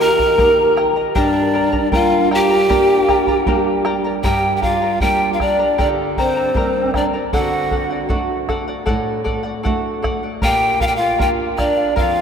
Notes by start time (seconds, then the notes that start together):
Already playing: D#3 A#3 D#4 G4
0.00 A#4 D#5 G5 A#5
0.18 A#4 D#5 A#5, bombo low
0.38 A#3 D#4 G4 A#4 D#5 G5 A#5, bombo low
0.77 A#4 D#5 G5 A#5, bombo rim
0.96 A#4 D#5 A#5
1.15 G2 D4 G4 A#4 D5 G5 A#5, bombo low
1.54 A#4 D5 G5 A#5
1.72 A#4 D5 A#5, bombo low
1.92 G3 A#3 D4 F4 A#4 D5 F5 G5 A#5, bombo low
2.31 G4 A#4 D5 G5 A#5, bombo rim
2.50 A#4 D5 A#5
2.69 G3 A#3 D4 G4 A#4 D5 G5 A#5, bombo low
3.09 A#4 D5 G5 A#5, bombo rim, bombo low
3.27 A#4 D5 A#5, bombo low
3.46 G3 A#3 D4 A#4 D5 G5 A#5, bombo low
3.85 A#4 D5 G5 A#5, bombo rim
4.04 A#4 D5 A#5
4.23 G2 G4 A#4 D5 G5 A#5, bombo low
4.55 G4 G5
4.62 F4 A#4 D5 F5 G5 A#5, bombo low
4.82 A#4 D5 A#5
5.00 G3 A#3 D4 G4 A#4 D5 G5 A#5, bombo low
5.32 F4 F5
5.40 D4 A#4 D5 G5 A#5, bombo rim, bombo low
5.59 A#4 D5 A#5
5.78 D3 D4 G4 A#4 D5 G5 A#5, bombo low
6.17 C4 A#4 C5 D5 G5 A#5, bombo low
6.36 A#4 D5 A#5
6.54 G3 A#3 D4 A#4 D5 G5 A#5, bombo low
6.94 D4 A#4 D5 G5 A#5, bombo rim, bombo low
7.13 A#4 D5 A#5
7.33 D3 F#4 A4 D5 F#5, bombo low
7.71 A4 D5 F#5, bombo low
7.90 D5 F#5
8.09 A3 D4 F#4 A4 D5 F#5, bombo low
8.49 A4 D5 F#5, bombo rim, bombo low
8.68 D5 F#5
8.86 A2 A4 D5 F#5, bombo low
9.24 A4 D5 F#5, bombo low
9.43 D5 F#5
9.63 A3 D4 F#4 A4 D5 F#5, bombo low
10.02 A4 D5 F#5, bombo rim, bombo low
10.23 D5 F#5
10.42 A#2 G4 A#4 D5 F5 G5, bombo low
10.80 F4 A#4 D5 F5, bombo low
10.87 G4 G5
10.96 F4 F5
11.00 D5 F5
11.19 A#3 D4 F4 G4 A#4 D5 F5 G5, bombo low
11.58 D4 A#4 D5 F5, bombo rim, bombo low
11.77 D5 F5
11.96 F2 F4 A#4 D5 F5, bombo low